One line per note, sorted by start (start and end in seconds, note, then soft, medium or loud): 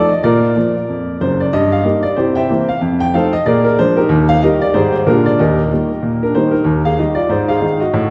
0.00 0.10 D5 medium
0.09 0.23 D#5 medium
0.23 0.51 A#2 medium
0.23 0.55 F4 medium
0.23 1.17 A#4 medium
0.23 1.20 D5 medium
0.56 0.74 F3 soft
0.56 0.74 A#3 soft
0.56 0.74 F4 soft
0.89 1.16 F2 soft
1.21 1.47 F#1 medium
1.21 1.46 F#2 soft
1.21 1.40 C5 medium
1.40 1.53 D5 medium
1.53 1.80 G2 medium
1.53 1.72 D#5 medium
1.72 1.85 F5 medium
1.83 2.02 G3 soft
1.83 2.02 A#3 soft
1.83 2.02 D#4 soft
1.83 2.02 G4 soft
1.83 2.02 A#4 soft
1.83 2.03 D#5 medium
2.03 2.16 D5 medium
2.16 2.44 C3 medium
2.16 2.35 E4 soft
2.16 2.35 G4 medium
2.16 2.35 C5 medium
2.35 2.66 C5 medium
2.35 2.66 E5 medium
2.35 2.68 G5 medium
2.50 2.67 E3 soft
2.50 2.68 A#3 soft
2.50 2.68 C4 soft
2.69 2.81 F5 medium
2.81 3.08 F2 medium
3.00 3.13 G5 medium
3.14 3.32 F3 soft
3.14 3.32 A3 soft
3.14 3.32 D#4 soft
3.14 3.32 A4 medium
3.14 3.32 C5 soft
3.14 3.33 F5 medium
3.33 3.46 D#5 medium
3.46 3.73 A#2 medium
3.46 3.64 G#4 medium
3.46 3.63 A#4 medium
3.46 3.65 D5 medium
3.64 3.77 A#4 medium
3.79 3.96 F3 soft
3.79 3.96 G#3 soft
3.79 3.96 D4 soft
3.79 3.97 C5 medium
3.96 4.27 D#4 medium
3.96 4.27 G4 medium
3.96 4.29 A#4 medium
4.09 4.37 D#2 medium
4.29 4.42 F5 medium
4.42 4.60 D#3 soft
4.42 4.61 G3 soft
4.42 4.61 D#4 soft
4.42 4.60 G4 medium
4.42 4.61 A#4 medium
4.42 4.61 D#5 medium
4.61 4.74 D5 medium
4.74 5.01 G#2 medium
4.74 4.92 D#3 soft
4.74 4.92 G3 soft
4.74 4.92 D#4 soft
4.74 4.93 G4 medium
4.74 4.93 G#4 medium
4.74 4.91 C5 medium
4.93 5.06 C5 medium
5.06 5.34 A#2 medium
5.06 5.24 D3 soft
5.06 5.25 G#3 soft
5.06 5.25 A#3 soft
5.06 5.25 D4 medium
5.06 5.25 F4 medium
5.06 5.26 A#4 medium
5.26 5.39 D5 medium
5.39 5.66 D#2 medium
5.39 6.32 G4 medium
5.39 6.21 A#4 medium
5.39 6.35 D#5 medium
5.71 5.88 D#3 soft
5.71 5.89 G3 soft
5.71 5.90 A#3 soft
6.03 6.30 A#2 soft
6.23 6.35 D4 soft
6.23 6.35 A#4 medium
6.35 6.53 D#3 soft
6.35 6.52 G3 soft
6.35 6.53 A#3 soft
6.35 6.51 D#4 medium
6.35 6.54 C5 medium
6.51 6.83 D#4 soft
6.51 6.84 A#4 medium
6.64 6.93 D#2 medium
6.85 6.98 G#4 medium
6.85 6.98 F5 medium
6.99 7.16 D#3 soft
6.99 7.17 G3 soft
6.99 7.17 D#4 soft
6.99 7.17 G4 soft
6.99 7.18 D#5 medium
7.15 7.29 F4 soft
7.15 7.29 D5 medium
7.29 7.57 G#2 medium
7.29 7.48 D#4 soft
7.29 7.49 C5 medium
7.49 7.80 G#4 medium
7.49 7.81 F5 medium
7.61 7.79 D#3 soft
7.61 7.79 G#3 soft
7.61 7.80 D#4 soft
7.80 8.10 F#4 medium
7.80 8.10 D#5 medium
7.94 8.10 A2 medium